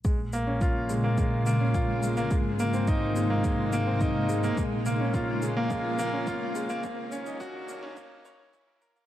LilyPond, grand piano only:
\new Staff \with { instrumentName = "Grand piano" } { \time 4/4 \key bes \minor \tempo 4 = 106 aes16 r16 bes16 des'16 f'16 r16 aes16 bes16 aes16 r16 bes16 des'16 f'16 r16 aes16 bes16 | aes16 r16 bes16 c'16 ees'16 r16 aes16 bes16 aes16 r16 bes16 c'16 ees'16 r16 aes16 bes16 | aes16 r16 bes16 des'16 f'16 r16 aes16 bes16 aes16 r16 bes16 des'16 f'16 r16 aes16 bes16 | bes16 r16 des'16 ees'16 ges'16 r16 bes16 des'16 bes16 r16 des''16 des''16 des'16 bes16 bes'16 bes16 | }